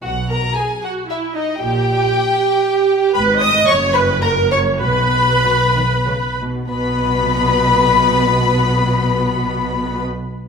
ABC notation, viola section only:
X:1
M:3/4
L:1/8
Q:1/4=100
K:Elyd
V:1 name="Viola section"
F A G F E D | =G6 | B d c B A c | B4- B z |
B,6- | B,6 |]